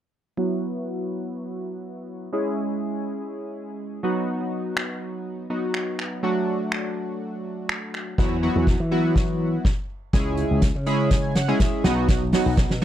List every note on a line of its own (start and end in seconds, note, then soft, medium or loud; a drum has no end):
0.37 2.29 F#3 medium
0.37 2.29 B3 medium
0.37 2.29 E4 medium
0.37 2.29 F#4 medium
2.33 4.00 G#3 medium
2.33 4.00 C#4 medium
2.33 4.00 E4 medium
2.33 4.01 G#4 medium
4.03 5.47 F#3 medium
4.03 5.47 B3 medium
4.03 5.47 D#4 medium
4.03 5.47 F#4 medium
4.77 finger snap loud
5.50 6.22 F#3 medium
5.50 6.23 B3 medium
5.50 6.23 D#4 medium
5.50 6.23 F#4 medium
5.74 finger snap loud
5.99 finger snap medium
6.23 8.14 F#3 medium
6.23 8.14 A3 medium
6.23 8.15 D4 medium
6.23 8.15 F#4 medium
6.72 finger snap loud
7.69 finger snap loud
7.94 finger snap medium
8.18 8.48 E2 medium
8.18 8.37 F#3 medium
8.18 8.37 B3 medium
8.18 8.37 E4 medium
8.18 8.37 F#4 medium
8.18 kick loud
8.18 snare soft
8.18 crash medium
8.43 8.80 F#3 medium
8.43 8.80 B3 medium
8.43 8.80 E4 medium
8.43 8.80 F#4 medium
8.56 8.75 E2 medium
8.67 kick loud
8.67 snare medium
8.80 9.56 E3 medium
8.91 9.64 F#3 medium
8.91 9.64 B3 medium
8.91 9.64 E4 medium
8.91 9.64 F#4 medium
9.16 kick loud
9.16 snare medium
9.65 kick loud
9.65 snare medium
10.13 10.43 C#2 loud
10.13 10.68 G#3 medium
10.13 10.68 C#4 medium
10.13 10.68 E4 medium
10.13 10.68 G#4 loud
10.13 kick loud
10.13 snare medium
10.13 closed hi-hat medium
10.37 closed hi-hat medium
10.51 10.70 C#2 medium
10.62 kick loud
10.62 snare medium
10.62 closed hi-hat medium
10.75 11.52 C#3 medium
10.86 11.32 G#3 medium
10.86 11.32 C#4 medium
10.86 11.32 E4 medium
10.86 11.32 G#4 loud
10.86 11.09 B5 medium
10.86 closed hi-hat medium
11.11 11.34 G#5 medium
11.11 kick loud
11.11 snare medium
11.11 closed hi-hat medium
11.35 11.58 F#5 medium
11.35 snare medium
11.35 closed hi-hat medium
11.48 11.84 G#3 medium
11.48 11.84 C#4 medium
11.48 11.84 E4 medium
11.48 11.84 G#4 medium
11.60 11.82 E5 medium
11.60 kick loud
11.60 snare medium
11.60 closed hi-hat medium
11.84 12.33 B1 loud
11.84 12.24 F#3 medium
11.84 12.24 B3 medium
11.84 12.24 D#4 medium
11.84 12.24 F#4 loud
11.84 12.07 D#5 medium
11.84 snare medium
11.84 closed hi-hat medium
12.08 kick loud
12.08 snare medium
12.08 closed hi-hat medium
12.33 12.70 F#3 medium
12.33 12.70 B3 medium
12.33 12.70 D#4 medium
12.33 12.70 F#4 medium
12.33 snare loud
12.33 open hi-hat medium
12.46 12.65 B1 medium
12.57 kick loud
12.57 snare loud
12.57 closed hi-hat medium
12.70 12.84 B2 medium
12.70 snare medium